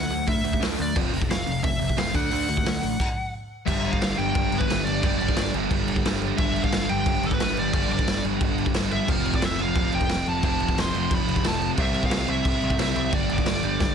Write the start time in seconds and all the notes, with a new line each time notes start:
Already playing: F#5
0.10 D2 D3 A3, open hi-hat
0.27 D2 D3 A3 E5, kick, open hi-hat
0.44 D2 D3 A3, open hi-hat
0.53 kick
0.60 D2 D3 A3 D4, snare, open hi-hat
0.79 D2 D3 A3 D5, open hi-hat
0.96 F1 F2 C3 F3, kick, crash
1.13 F1 F2 C3, open hi-hat
1.22 kick
1.30 F1 F2 C3 F5, snare, open hi-hat
1.46 F1 F2 C3, open hi-hat
1.63 F1 F2 C3 E5, kick, open hi-hat
1.79 F1 F2 C3, open hi-hat
1.89 kick
1.97 F1 F2 C3 F3 F5, snare, open hi-hat
2.13 D2 D3 A3 D4 F#5, kick, open hi-hat
2.30 D2 D3 A3 D4, open hi-hat
2.49 D2 D3 A3, open hi-hat
2.57 kick
2.64 D2 D3 A3, snare, open hi-hat
2.81 A1 D3 A3, open hi-hat
3.00 kick, crash
3.67 G1 G2 D3 G3 E5, kick, crash
3.85 crash
3.92 F5, kick
4.01 G1, snare, crash
4.17 G1 G2 D3 G3 G5, crash
4.35 G1, kick, crash
4.52 G1, crash
4.58 B4, kick
4.68 G1 G2 D3 G3, snare, crash
4.84 G1 D5, crash
5.03 G1 G2 D3 G3, kick, crash
5.18 G1 D5, crash
5.28 kick
5.36 G1, snare, crash
5.54 G1 G2 D3 G3, crash
5.71 G1, kick, crash
5.88 G1, crash
5.96 kick
6.04 G1 G2 D3 G3, snare, crash
6.22 crash
6.36 G1 G2 D3 G3 E5, kick, crash
6.56 crash
6.64 F5, kick
6.72 G1, snare, crash
6.88 G1 G2 D3 G3 G5, crash
7.06 G1, kick, crash
7.23 G1 A4, crash
7.31 B4, kick
7.40 G1 G2 D3 G3, snare, crash
7.57 G1 D5, crash
7.73 G1 G2 D3 G3 D5, kick, crash
7.90 G1 D5, crash
7.99 kick
8.07 G1, snare, crash
8.23 G1 G2 D3 G3, crash
8.41 G1, kick, crash
8.58 G1, crash
8.66 kick
8.74 G1 G2 D3 G3, snare, crash
8.92 E5, crash
9.07 F1 F2 C3 F3 F5, kick, crash
9.26 crash
9.34 D5, kick
9.42 F1 E5, snare, crash
9.59 F1 F2 C3 F3 F5, crash
9.75 F1, kick, crash
9.92 F1 G5, crash
10.01 kick
10.09 F1 F2 C3 F3, snare, crash
10.26 F1 A5, crash
10.43 F1 F2 C3 F3 A5, kick, crash
10.60 F1, crash
10.69 kick
10.77 F1 C6, snare, crash
10.93 F1 F2 C3 F3, crash
11.11 F1 B5, kick, crash
11.28 F1, crash
11.36 kick
11.44 F1 F2 C3 F3 A5, snare, crash
11.62 crash
11.76 C2 C3 G3 C4 E5, kick, crash
11.94 crash
12.03 F5, kick
12.10 C2, snare, crash
12.27 C2 C3 G3 C4 E5, crash
12.45 C2, kick, crash
12.61 C2, crash
12.70 kick
12.79 C2 C3 G3 C4 E5, snare, crash
12.96 C2 E5, crash
13.12 G1 G2 D3 G3 D5, kick, crash
13.29 G1, crash
13.38 kick
13.46 G1, snare, crash
13.63 G1 G2 D3 G3, crash
13.80 G1, kick, snare